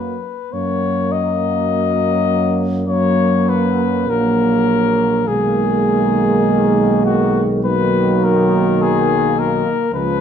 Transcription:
Already playing: tuba F#2, trombone section F#3, french horn section A#3, cornet B4
0.52 tuba F#2, trombone section F#3, french horn section A#3, cornet C#5
1.12 cornet D#5
2.87 trombone section F#3, french horn section A#3, euphonium A#3, cornet C#5
3.49 cornet B4
4.07 tuba A#1, trombone section F#3, french horn section A#3, cornet A#4
5.27 tuba B1, trombone section D#3, euphonium G#3, french horn section A#3, cornet G#4
7.05 cornet F#4
7.63 trombone section D#3, euphonium F#3, french horn section A#3, cornet B4
8.24 cornet A#4
8.82 cornet G#4
9.39 cornet A#4
9.91 tuba C#2, trombone section F3, euphonium F3, french horn section G#3, cornet B4

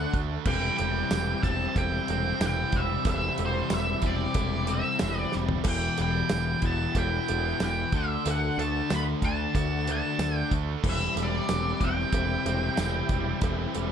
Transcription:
Already playing: overdriven electric guitar D3 A3 D4, distorted electric guitar D3 D4 F#4, tonewheel organ A3 D4 F#4 D5, lead electric guitar F#5
0.14 picked electric bass D2, distorted electric guitar A3, kick, closed hi-hat
0.45 picked electric bass E1, overdriven electric guitar C3 G3 C4, distorted electric guitar E3, tonewheel organ C4 E4 G4 E5, lead electric guitar G5, kick, crash, cowbell
0.77 picked electric bass E1, distorted electric guitar G3, lead electric guitar G5, closed hi-hat, cowbell
1.11 picked electric bass E1, distorted electric guitar E3, snare, closed hi-hat, tambourine, cowbell
1.43 picked electric bass E1, overdriven electric guitar C3 G3 C4, distorted electric guitar C4, lead electric guitar A5, kick, closed hi-hat
1.75 picked electric bass E1, distorted electric guitar E4, lead electric guitar G5, kick, closed hi-hat, cowbell
2.08 picked electric bass E1, distorted electric guitar C4, closed hi-hat, cowbell
2.40 picked electric bass E1, overdriven electric guitar C3 G3 C4, distorted electric guitar E3, snare, closed hi-hat, tambourine, cowbell
2.46 lead electric guitar G5
2.72 picked electric bass E1, distorted electric guitar G3, lead electric guitar E5, kick, closed hi-hat
3.03 picked electric bass E1, overdriven electric guitar C3, distorted electric guitar E3, tonewheel organ E4 G4 C5 E5, kick, closed hi-hat, cowbell
3.08 overdriven electric guitar G3 C4, lead electric guitar E5
3.38 picked electric bass E1, distorted electric guitar G3, closed hi-hat, cowbell
3.46 lead electric guitar C5
3.70 picked electric bass E1, distorted electric guitar E3, lead electric guitar E5, snare, closed hi-hat, tambourine, cowbell
4.02 picked electric bass E1, overdriven electric guitar C3 G3 C4, distorted electric guitar C4, kick, closed hi-hat
4.07 lead electric guitar D5
4.34 picked electric bass E1, distorted electric guitar E4, kick, closed hi-hat, cowbell
4.67 distorted electric guitar C4, closed hi-hat, cowbell
4.74 lead electric guitar E5
4.99 picked electric bass E1, overdriven electric guitar C3 G3 C4, distorted electric guitar E3, snare, closed hi-hat, tambourine, cowbell
5.18 lead electric guitar D5
5.32 picked electric bass E1, distorted electric guitar G3, snare
5.49 floor tom
5.64 picked electric bass E1, overdriven electric guitar E2 B2 E3, distorted electric guitar E3, tonewheel organ B3 E4 E5, kick, closed hi-hat, cowbell, crash
5.68 lead electric guitar G5
5.98 picked electric bass E1, distorted electric guitar G3, closed hi-hat, cowbell
6.02 lead electric guitar G5
6.29 picked electric bass E1, distorted electric guitar E3, snare, closed hi-hat, tambourine, cowbell
6.62 picked electric bass E1, overdriven electric guitar E2 B2 E3, distorted electric guitar B3, lead electric guitar A5, kick, closed hi-hat
6.95 picked electric bass E1, distorted electric guitar E4, lead electric guitar G5, kick, closed hi-hat, cowbell
7.28 picked electric bass E1, distorted electric guitar B3, closed hi-hat, cowbell
7.60 picked electric bass E1, overdriven electric guitar E2 B2 E3, distorted electric guitar E3, snare, closed hi-hat, tambourine, cowbell
7.64 lead electric guitar G5
7.92 picked electric bass D2, overdriven electric guitar D3 A3 D4, distorted electric guitar D3, tonewheel organ A3 D4 F#4 D5, lead electric guitar E5, kick, closed hi-hat
8.25 picked electric bass D2, distorted electric guitar D3, closed hi-hat, cowbell
8.30 lead electric guitar F#5
8.58 picked electric bass D2, distorted electric guitar A3, lead electric guitar A5, closed hi-hat, cowbell
8.90 picked electric bass D2, overdriven electric guitar D3 A3 D4, distorted electric guitar D3, lead electric guitar B5, snare, closed hi-hat, tambourine, cowbell
9.22 picked electric bass D2, distorted electric guitar D4, lead electric guitar A5, kick, closed hi-hat
9.55 picked electric bass D2, distorted electric guitar F#4, kick, closed hi-hat, cowbell
9.87 overdriven electric guitar D3 A3 D4, distorted electric guitar D4, closed hi-hat, cowbell
9.92 lead electric guitar A5
10.19 picked electric bass D2, distorted electric guitar D3, snare, closed hi-hat, tambourine, cowbell
10.36 lead electric guitar G5
10.51 picked electric bass D2, distorted electric guitar A3, kick, closed hi-hat
10.83 picked electric bass E1, overdriven electric guitar C3 G3 C4, distorted electric guitar E3, tonewheel organ C4 E4 G4 E5, kick, cowbell, crash
10.90 lead electric guitar E5
11.16 picked electric bass E1, distorted electric guitar G3, closed hi-hat, cowbell
11.24 lead electric guitar D5
11.49 picked electric bass E1, distorted electric guitar E3, snare, closed hi-hat, tambourine, cowbell
11.80 picked electric bass E1, overdriven electric guitar C3 G3 C4, distorted electric guitar C4, lead electric guitar G5, kick, closed hi-hat
12.12 picked electric bass E1, distorted electric guitar E4, kick, closed hi-hat, cowbell
12.45 picked electric bass E1, distorted electric guitar C4, closed hi-hat, cowbell
12.77 picked electric bass E1, overdriven electric guitar C3 G3 C4, distorted electric guitar E3, snare, closed hi-hat, tambourine, cowbell
13.09 picked electric bass E1, distorted electric guitar G3, kick, closed hi-hat
13.41 picked electric bass E1, overdriven electric guitar C3 G3 C4, tonewheel organ C4 E4 G4 E5, kick, closed hi-hat, cowbell
13.45 distorted electric guitar E3
13.75 picked electric bass E1, distorted electric guitar G3, closed hi-hat, cowbell

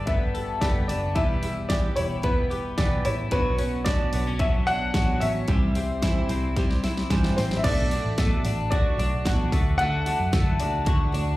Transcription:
Already playing: picked electric bass G1, clean electric guitar G3 D4 A4
0.06 steel-string acoustic guitar A3 D4 G4, clean electric guitar B3, upright piano E5, kick, closed hi-hat
0.10 steel-string acoustic guitar B4
0.34 steel-string acoustic guitar D4 G4 B4, clean electric guitar A4, open hi-hat
0.61 picked electric bass F#1, steel-string acoustic guitar G3 A3 D4 G4 B4, clean electric guitar B3, upright piano D5, kick, snare, closed hi-hat
0.88 picked electric bass F#1, steel-string acoustic guitar D4 G4 B4, upright piano D5, open hi-hat
1.15 picked electric bass E1, steel-string acoustic guitar E3 B3 E4 G4 B4, clean electric guitar G3, upright piano E5, kick, closed hi-hat
1.42 steel-string acoustic guitar E4 G4 B4, open hi-hat
1.69 steel-string acoustic guitar E3 B3 E4 G4 B4, upright piano D5, kick, snare, closed hi-hat
1.96 picked electric bass E1, steel-string acoustic guitar E4 G4 B4, upright piano C#5, open hi-hat
2.22 steel-string acoustic guitar B3 E4 G4 B4, upright piano B4, kick, closed hi-hat
2.50 steel-string acoustic guitar E4 G4 B4, open hi-hat
2.78 picked electric bass B1, steel-string acoustic guitar E3 B3 E4 G4 B4, upright piano D5, kick, snare, closed hi-hat
3.05 picked electric bass A1, steel-string acoustic guitar E4 G4 B4, upright piano C#5, open hi-hat
3.31 picked electric bass B1, steel-string acoustic guitar B2 F#3 B3 D4 F#4 C#5, upright piano B4, kick, closed hi-hat
3.58 steel-string acoustic guitar B3 D4 F#4 C#5, clean electric guitar C#4, open hi-hat
3.84 steel-string acoustic guitar B2 F#3 B3 D4 F#4 C#5, upright piano D5, kick, snare, closed hi-hat
4.13 picked electric bass B1, steel-string acoustic guitar B3 D4 F#4 C#5, open hi-hat
4.27 clean electric guitar C#4
4.39 clean electric guitar F#3, steel-string acoustic guitar B3 D4 F#4 C#5, upright piano E5, kick, closed hi-hat
4.67 steel-string acoustic guitar B3 D4 F#4 C#5, upright piano F#5, open hi-hat
4.94 picked electric bass A1, steel-string acoustic guitar B2 F#3 B3 D4 F#4 C#5, kick, snare, closed hi-hat
5.20 picked electric bass A1, steel-string acoustic guitar B3 D4 F#4 C#5, clean electric guitar C#4, upright piano E5, open hi-hat
5.47 picked electric bass C2, steel-string acoustic guitar C3 E3 G3 C4 E4 C5, kick, closed hi-hat
5.75 steel-string acoustic guitar G3 C4 E4 C5, open hi-hat
6.02 steel-string acoustic guitar C3 E3 G3 C4 E4 C5, kick, snare, closed hi-hat
6.28 picked electric bass C2, steel-string acoustic guitar G3 C4 E4 C5, open hi-hat
6.56 steel-string acoustic guitar G3 C4 E4 C5, kick, snare, closed hi-hat
6.71 snare
6.83 steel-string acoustic guitar G3 C4 E4 C5, snare, open hi-hat
6.97 snare
7.10 picked electric bass G2, steel-string acoustic guitar C3 E3 G3 C4 E4 C5, kick, snare, closed hi-hat
7.24 snare
7.37 picked electric bass A1, steel-string acoustic guitar G3 C4 E4 C5, upright piano C5, snare, open hi-hat
7.51 snare
7.57 upright piano E5
7.64 picked electric bass B1, steel-string acoustic guitar B2 F#3 A3 D4 F#4, upright piano D5, kick, closed hi-hat, crash
7.91 steel-string acoustic guitar A3 D4 F#4, open hi-hat
8.05 picked electric bass A1
8.17 steel-string acoustic guitar B2 F#3 A3 D4 F#4, kick, snare, closed hi-hat
8.44 picked electric bass A1, steel-string acoustic guitar A3 D4 F#4, open hi-hat
8.70 steel-string acoustic guitar F#3 A3 D4 F#4, upright piano D5, kick, closed hi-hat
8.98 picked electric bass B1, steel-string acoustic guitar A3 D4 F#4, open hi-hat
9.25 picked electric bass A1, steel-string acoustic guitar B2 F#3 A3 D4 F#4, kick, snare, closed hi-hat
9.52 picked electric bass D2, steel-string acoustic guitar A3 D4 F#4, kick, open hi-hat
9.78 picked electric bass D2, steel-string acoustic guitar D3 A3 D4 F#4, upright piano F#5, closed hi-hat
10.06 steel-string acoustic guitar A3 D4 F#4, open hi-hat
10.20 picked electric bass F#2
10.32 steel-string acoustic guitar D3 A3 D4 F#4, kick, snare, closed hi-hat
10.59 picked electric bass C#2, steel-string acoustic guitar A3 D4 F#4, open hi-hat
10.85 steel-string acoustic guitar D3 A3 D4 F#4, kick, closed hi-hat
11.12 picked electric bass D2, steel-string acoustic guitar A3 D4 F#4, open hi-hat

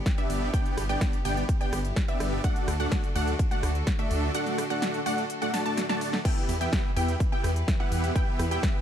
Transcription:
Already playing: string section B3 D4 G4
0.06 kick, snare, closed hi-hat
0.18 supersaw synth B3 D4 G4 D5 E5, synth pluck E5, closed hi-hat
0.30 detuned saw bass G1, open hi-hat, ride
0.54 supersaw synth B3 D4 G4 D5 G5, string section E4, synth pluck G5, kick, closed hi-hat
0.66 closed hi-hat
0.77 detuned saw bass G1, cross-stick, open hi-hat, ride
0.89 supersaw synth B3 D4 G4 D5 G5, synth pluck G5, closed hi-hat
1.01 kick, snare, closed hi-hat
1.13 closed hi-hat
1.25 detuned saw bass G1, supersaw synth B3 D4 G4 D5 G5, synth pluck G5, open hi-hat, ride
1.37 closed hi-hat
1.49 kick, closed hi-hat
1.61 supersaw synth B3 D4 G4 D5 G5, synth pluck G5, closed hi-hat
1.73 detuned saw bass G1, cross-stick, open hi-hat, ride
1.85 closed hi-hat
1.96 kick, snare, closed hi-hat
2.08 supersaw synth B3 D4 G4 D5 E5, synth pluck E5, closed hi-hat
2.20 detuned saw bass G1, cross-stick, open hi-hat, ride
2.44 string section D3 D4 F#4 A4, supersaw synth A3 D4 F#4 D5 F#5, synth pluck F#5, kick, closed hi-hat
2.56 closed hi-hat
2.68 detuned saw bass D2, cross-stick, open hi-hat, ride
2.80 supersaw synth A3 D4 F#4 D5 F#5, synth pluck F#5, closed hi-hat
2.92 kick, snare, closed hi-hat
3.04 closed hi-hat
3.15 detuned saw bass D2, supersaw synth A3 D4 F#4 D5 F#5, synth pluck F#5, open hi-hat, ride
3.27 closed hi-hat
3.39 kick, closed hi-hat
3.51 supersaw synth A3 D4 F#4 D5 F#5, synth pluck F#5, closed hi-hat
3.63 detuned saw bass D2, cross-stick, open hi-hat, ride
3.75 closed hi-hat
3.87 kick, snare, closed hi-hat
3.99 supersaw synth A3 D4 F#4 D5 E5, synth pluck E5, closed hi-hat
4.11 detuned saw bass D2, open hi-hat, ride
4.35 supersaw synth A3 D4 F#4 D5 F#5, synth pluck F#5, closed hi-hat
4.46 snare, closed hi-hat
4.58 cross-stick, open hi-hat, ride
4.70 supersaw synth A3 D4 F#4 D5 F#5, synth pluck F#5, closed hi-hat
4.82 snare, closed hi-hat
4.94 closed hi-hat
5.06 supersaw synth A3 D4 F#4 D5 F#5, synth pluck F#5, open hi-hat, ride
5.18 closed hi-hat
5.30 closed hi-hat
5.42 supersaw synth A3 D4 F#4 D5 F#5, synth pluck F#5, closed hi-hat
5.54 supersaw synth A3 D4 F#4 D5 A5, synth pluck A5, snare, open hi-hat, ride
5.66 supersaw synth A3 D4 F#4 D5 A5, synth pluck A5, closed hi-hat
5.78 snare, closed hi-hat
5.89 supersaw synth A3 D4 F#4 D5 A5, synth pluck A5, snare, closed hi-hat
6.01 open hi-hat, ride
6.13 snare
6.25 string section E3 E4 G4 B4, supersaw synth B3 E4 G4 E5 G5, synth pluck G5, kick, closed hi-hat, crash
6.49 detuned saw bass E2, open hi-hat, ride
6.61 supersaw synth B3 E4 G4 E5 G5, synth pluck G5, closed hi-hat
6.73 kick, snare, closed hi-hat
6.96 detuned saw bass E2, supersaw synth B3 E4 G4 E5 G5, synth pluck G5, open hi-hat, ride
7.08 closed hi-hat
7.20 kick, closed hi-hat
7.32 supersaw synth B3 E4 G4 E5 G5, synth pluck G5
7.44 detuned saw bass E2, cross-stick, open hi-hat, ride
7.56 closed hi-hat
7.68 kick, snare, closed hi-hat
7.80 supersaw synth B3 E4 G4 E5 F#5, synth pluck F#5
7.92 detuned saw bass E2, open hi-hat, ride
8.04 closed hi-hat
8.16 supersaw synth B3 E4 G4 E5 G5, synth pluck G5, kick, closed hi-hat
8.39 detuned saw bass E2, cross-stick, open hi-hat, ride
8.51 supersaw synth B3 E4 G4 E5 G5, synth pluck G5, closed hi-hat
8.63 kick, snare, closed hi-hat

